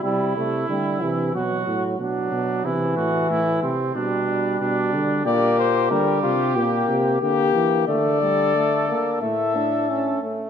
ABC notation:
X:1
M:4/4
L:1/8
Q:1/4=91
K:C
V:1 name="Cornet"
z8 | z8 | [K:Aphr] d c B F G2 G2 | d4 e3 z |]
V:2 name="Trumpet"
E4 ^F2 D2 | E ^F E C D2 D2 | [K:Aphr] G2 G4- G z | A4 A3 z |]
V:3 name="Trombone"
G, A, G, E, ^F,2 F,2 | E,4 G,4 | [K:Aphr] B,2 G, z B,2 B,2 | A, G, A, B, A, D ^C A, |]
V:4 name="Bass trombone" clef=bass
C, C, D, C, B,, A,, B,, B,, | C, A,, A,, C, B,,2 B,, D, | [K:Aphr] B,,2 D, C, B,, C, D, E, | D,3 z A,,3 z |]